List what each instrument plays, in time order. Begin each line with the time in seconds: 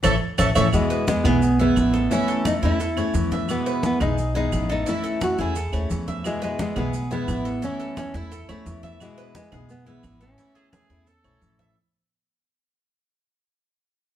0.03 upright bass A1, steel-string acoustic guitar E3 A3 C#4, cuban tres A4 C#5 E5, high conga, claves, maracas
0.38 upright bass A1, steel-string acoustic guitar E3 A3 C#4, cuban tres A4 C#5 E5, high conga, claves, maracas
0.55 upright bass A1, steel-string acoustic guitar E3 A3 C#4, cuban tres A4 C#5 E5, high conga, claves, maracas
0.72 upright bass E2, steel-string acoustic guitar B2 E3 G#3 B3 E4, high conga, claves, maracas
0.90 cuban tres B4, high conga, maracas
1.07 steel-string acoustic guitar E3 G#3 B3 E4, high conga, maracas
1.24 upright bass B1, steel-string acoustic guitar E3 G#3 B3 E4, cuban tres G#4, high conga, low conga, claves, maracas
1.42 muted steel-string acoustic guitar stroke, high conga, maracas
1.59 steel-string acoustic guitar E3 G#3 B3 E4, cuban tres E4, high conga, maracas
1.76 upright bass A1, steel-string acoustic guitar E3 G#3 B3 E4, high conga, claves, maracas
1.94 cuban tres A4, high conga, maracas
2.10 steel-string acoustic guitar E3 A3 C#4 E4, cuban tres E4, high conga, maracas
2.28 cuban tres A4, high conga, maracas
2.44 steel-string acoustic guitar E3 A3 C#4 E4, nylon-string guitar D#4, high conga, claves, maracas
2.62 upright bass E2, steel-string acoustic guitar A3 C#4 E4, cuban tres E4, high conga, maracas
2.79 cuban tres A4, muted steel-string acoustic guitar stroke, high conga, maracas
2.96 steel-string acoustic guitar A3 C#4 E4, cuban tres C#5, high conga, claves, maracas
3.13 upright bass E2, steel-string acoustic guitar E3 A3 C#4 E4, high conga, maracas
3.31 cuban tres E5, high conga, maracas
3.48 steel-string acoustic guitar B2 E3 G#3 B3 E4, high conga, claves, maracas
3.66 cuban tres B4, high conga, maracas
3.83 steel-string acoustic guitar E3 G#3 B3 E4, high conga, maracas
4.00 upright bass B1, steel-string acoustic guitar E3 G#3 B3 E4, nylon-string guitar D#4, cuban tres G#4, high conga, low conga, claves, maracas
4.17 muted steel-string acoustic guitar stroke, high conga, maracas
4.35 steel-string acoustic guitar E3 G#3 B3 E4, nylon-string guitar D#4, cuban tres G#4, high conga, maracas
4.52 upright bass A1, steel-string acoustic guitar E3 G#3 B3 E4, high conga, claves, maracas
4.69 nylon-string guitar D#4, cuban tres A4, high conga, maracas
4.86 steel-string acoustic guitar E3 A3 C#4 E4, cuban tres E4, high conga, maracas
5.04 cuban tres A4, high conga, maracas
5.21 steel-string acoustic guitar E3 A3 C#4 E4, nylon-string guitar F#4, high conga, claves, maracas
5.38 upright bass E2, steel-string acoustic guitar A3 C#4 E4, cuban tres E4, nylon-string guitar G#4, high conga, maracas
5.55 cuban tres A4, muted steel-string acoustic guitar stroke, high conga, maracas
5.72 upright bass D#2, steel-string acoustic guitar A3 C#4 E4, cuban tres C#5, high conga, claves, maracas
5.89 upright bass E2, steel-string acoustic guitar E3 A3 C#4 E4, high conga, maracas
6.08 cuban tres E5, high conga, maracas
6.24 steel-string acoustic guitar B2 E3 G#3 B3 E4, high conga, claves, maracas
6.42 nylon-string guitar G#3, cuban tres B4, high conga, maracas
6.59 steel-string acoustic guitar E3 G#3 B3 E4, high conga, maracas
6.76 upright bass B1, steel-string acoustic guitar E3 G#3 B3 E4, cuban tres G#4, high conga, low conga, claves, maracas
6.94 muted steel-string acoustic guitar stroke, high conga, maracas
7.11 steel-string acoustic guitar E3 G#3 B3 E4, cuban tres E4, high conga, maracas
7.27 upright bass A1, steel-string acoustic guitar E3 G#3 B3 E4, high conga, claves, maracas
7.45 cuban tres A4, maracas
7.62 steel-string acoustic guitar E3 A3 C#4 E4, cuban tres E4, high conga, maracas
7.80 cuban tres A4, high conga, maracas
7.96 steel-string acoustic guitar E3 A3 C#4 E4, high conga, claves, maracas
8.14 upright bass E2, steel-string acoustic guitar A3 C#4 E4, cuban tres E4, high conga, maracas
8.32 cuban tres A4, muted steel-string acoustic guitar stroke, high conga, maracas
8.48 upright bass D#2, steel-string acoustic guitar A3 C#4 E4, cuban tres C#5, high conga, claves, maracas
8.66 upright bass E2, steel-string acoustic guitar E3 A3 C#4 E4, high conga, maracas
8.83 cuban tres E5, high conga, maracas
9.00 steel-string acoustic guitar B2 E3 G#3 B3 E4, high conga, claves, maracas
9.18 cuban tres B4, high conga, maracas
9.35 steel-string acoustic guitar E3 G#3 B3 E4, high conga, maracas
9.52 upright bass B1, steel-string acoustic guitar E3 G#3 B3 E4, cuban tres G#4, high conga, low conga, claves, maracas
9.69 nylon-string guitar B3, muted steel-string acoustic guitar stroke, maracas
9.85 steel-string acoustic guitar E3 G#3 B3 E4, cuban tres E4, high conga, maracas
10.03 upright bass A1, steel-string acoustic guitar E3 G#3 B3 E4, high conga, claves, maracas
10.21 nylon-string guitar C#4, cuban tres A4, high conga, maracas
10.38 steel-string acoustic guitar E3 A3 C#4 E4, cuban tres E4, high conga, maracas
10.55 trumpet G#4, cuban tres A4, high conga, maracas
10.72 steel-string acoustic guitar E3 A3 C#4 E4, trumpet G#4, high conga, claves, maracas
10.89 upright bass E2, steel-string acoustic guitar A3 C#4 E4, cuban tres E4, maracas
11.07 cuban tres A4, trumpet A4, muted steel-string acoustic guitar stroke, high conga, maracas
11.24 upright bass B1, steel-string acoustic guitar A3 C#4 E4, cuban tres C#5, high conga, claves, maracas
11.41 upright bass A1, steel-string acoustic guitar E3 A3 C#4 E4, high conga, maracas
11.59 cuban tres E5, high conga, maracas